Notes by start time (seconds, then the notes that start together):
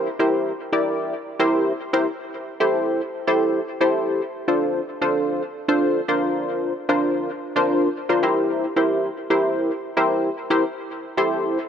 0.19 E4 G4 A#4 C5
0.73 E4 G4 A#4 D5
1.39 E4 G4 A#4 C5
1.93 E4 G4 A#4 C5
2.60 E4 G4 A4 C5
3.27 E4 G4 A4 C5
3.81 E4 G4 A4 C5
4.48 D4 F4 A4 C5
5.01 D4 F4 A4 C5
5.68 D4 F4 A4 C5
6.08 D4 F4 A#4 C5
6.89 D4 F4 A#4 C5
7.56 D4 F4 A#4 C5
8.09 D4 F4 A#4 C5
8.23 E4 G4 A#4 C5
8.76 E4 G4 A#4 C5
9.30 E4 G4 A#4 C5
9.97 E4 G4 A#4 C5
10.50 E4 G4 A#4 C5
11.17 E4 G4 A4 C5